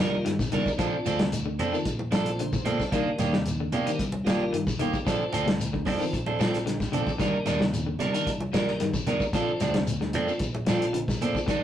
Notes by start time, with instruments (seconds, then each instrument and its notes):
Already playing: fingered electric bass C2
0.00 tonewheel organ D#3 G3 A#3 F4, clean electric guitar F3 G3 D4 D#4 A#4, low conga, shekere
0.14 shekere
0.25 fingered electric bass G2, clean electric guitar D#3, snare, closed hi-hat
0.39 kick, snare, high conga, shekere
0.52 fingered electric bass C2, clean electric guitar D#3 G3 D4 D#4 A#4, closed hi-hat, high conga, low conga, shekere
0.66 tonewheel organ A#3 D4, kick, shekere
0.78 fingered electric bass A#1, clean electric guitar F3 C4 D4 A4, tonewheel organ F3 A3 C4 D4, kick, closed hi-hat, shekere
1.06 fingered electric bass D2, clean electric guitar F3 C4 D4 A4, closed hi-hat, high conga, low conga, shekere
1.19 clean electric guitar C3, snare, closed hi-hat, shekere
1.32 closed hi-hat, high conga, shekere
1.46 clean electric guitar D3
1.59 fingered electric bass F2, clean electric guitar F3 C4 D4 A4, closed hi-hat, high conga, low conga, shekere
1.73 clean electric guitar D#3, tonewheel organ F3 A3 C4 D4, shekere
1.85 fingered electric bass A#1, kick, closed hi-hat, shekere
1.99 high conga
2.11 clean electric guitar F3 D4 A4, tonewheel organ F3 A3 C4 D4, snare, closed hi-hat, shekere
2.26 closed hi-hat, shekere
2.39 clean electric guitar D3, tonewheel organ C5, closed hi-hat
2.53 kick, high conga, shekere
2.65 fingered electric bass A#2, clean electric guitar D3 F3 C4 D4 A4, tonewheel organ F5, closed hi-hat, low conga, shekere
2.80 tonewheel organ C4 D4, kick, snare, shekere
2.92 fingered electric bass C2, clean electric guitar D#3 A#3 D4, tonewheel organ D#3 G3 A#3 D4, muted clean electric guitar stroke, kick, closed hi-hat, shekere
3.07 muted fingered electric bass stroke
3.18 fingered electric bass D#2, clean electric guitar D#3 A#3 D4 G4, snare, closed hi-hat, high conga, low conga, shekere
3.33 clean electric guitar C3, snare, high conga, shekere
3.46 closed hi-hat, high conga, shekere
3.60 clean electric guitar D3
3.72 fingered electric bass C3, clean electric guitar D#3 A#3 D4 G4, closed hi-hat, high conga, low conga, shekere
3.86 tonewheel organ D#3 G3 A#3 C4, clean electric guitar D#3, closed hi-hat, shekere
3.99 fingered electric bass C2, kick, closed hi-hat, shekere
4.12 high conga
4.24 tonewheel organ D#3 G3 A#3 F4, clean electric guitar D#3 A#3 D4 G4, snare, closed hi-hat, shekere
4.41 shekere
4.53 fingered electric bass G2, clean electric guitar D#3, closed hi-hat
4.67 kick, high conga, shekere
4.79 fingered electric bass C2, clean electric guitar D#3 A#3 G4, closed hi-hat, low conga, shekere
4.93 tonewheel organ A#3 D4, kick, shekere
5.05 fingered electric bass A#1, tonewheel organ F3 A3 C4 D4, clean electric guitar F3 C4 D4 A4, kick, snare, closed hi-hat, shekere
5.32 fingered electric bass D2, clean electric guitar F3 C4 D4 A4, closed hi-hat, high conga, shekere
5.46 clean electric guitar C3, snare, closed hi-hat, shekere
5.60 closed hi-hat, shekere
5.73 clean electric guitar D3, kick
5.85 fingered electric bass F2, clean electric guitar F3 C4 D4 A4, kick, snare, open hi-hat, high conga, low conga, shekere
5.99 clean electric guitar D#3, tonewheel organ F3 A3 C4 D4, shekere
6.13 fingered electric bass A#1, kick, closed hi-hat, shekere
6.26 clean electric guitar C4 D4 A4, high conga
6.39 clean electric guitar F3 C4 D4 A4, tonewheel organ F3 A3 C4 D4, snare, closed hi-hat, low conga, shekere
6.54 snare, closed hi-hat, shekere
6.66 clean electric guitar D3, tonewheel organ G5, snare, closed hi-hat
6.80 kick, snare, high conga, shekere
6.92 fingered electric bass A#1, clean electric guitar D3 F3 C4 D4 A4, tonewheel organ D5, closed hi-hat, low conga, shekere
7.05 tonewheel organ C4 D4, kick, shekere
7.18 fingered electric bass C2, clean electric guitar D#3 G3 D4 D#4 A#4, tonewheel organ D#3 G3 A#3 D4, kick, snare, closed hi-hat, shekere
7.35 muted fingered electric bass stroke
7.46 fingered electric bass D#2, clean electric guitar G3 D4 D#4 A#4, snare, closed hi-hat, high conga, shekere
7.59 clean electric guitar C3, snare, high conga, shekere
7.73 closed hi-hat, high conga, shekere
7.87 clean electric guitar D3
7.99 fingered electric bass C3, clean electric guitar G3 D4 D#4 A#4, closed hi-hat, high conga, low conga, shekere
8.13 tonewheel organ D#3 G3 A#3 D4, clean electric guitar D#3 D4 D#4 A#4, closed hi-hat, shekere
8.27 fingered electric bass C2, kick, closed hi-hat, shekere
8.40 high conga
8.52 tonewheel organ D#3 G3 A#3 D4, clean electric guitar F3 G3 D4 D#4 A#4, snare, closed hi-hat, shekere
8.68 snare, shekere
8.80 fingered electric bass G2, clean electric guitar D#3, snare, closed hi-hat
8.94 kick, high conga, shekere
9.06 fingered electric bass C2, clean electric guitar D#3 G3 D4 D#4 A#4, closed hi-hat, low conga, shekere
9.19 tonewheel organ A#3 D4, muted fingered electric bass stroke, kick, shekere
9.33 fingered electric bass A#1, tonewheel organ F3 A3 C4 D4, clean electric guitar F3 C4 D4 A4, kick, snare, closed hi-hat, shekere
9.60 fingered electric bass D2, clean electric guitar F3 C4 D4, snare, closed hi-hat, high conga, shekere
9.74 clean electric guitar C3, snare, closed hi-hat, high conga
9.87 closed hi-hat, high conga, shekere
10.01 clean electric guitar D3, snare
10.13 fingered electric bass F2, clean electric guitar F3 C4 D4 A4, closed hi-hat, high conga, low conga, shekere
10.27 tonewheel organ F3 A3 C4 D4, muted clean electric guitar stroke, shekere
10.39 fingered electric bass A#1, kick, closed hi-hat, shekere
10.55 high conga
10.66 clean electric guitar F3 C4 D4 A4, tonewheel organ F3 A3 C4 F4, snare, closed hi-hat, shekere
10.82 closed hi-hat, shekere
10.93 clean electric guitar D3, closed hi-hat
11.08 kick, snare, high conga, shekere
11.21 fingered electric bass A#2, clean electric guitar F3 C4 D4 A4, closed hi-hat, high conga, low conga, shekere
11.35 tonewheel organ C4 F4, kick, shekere
11.46 fingered electric bass C2, clean electric guitar D#3 G3 D4 D#4, tonewheel organ D#3 G3 A#3 D4, muted clean electric guitar stroke, kick, closed hi-hat, shekere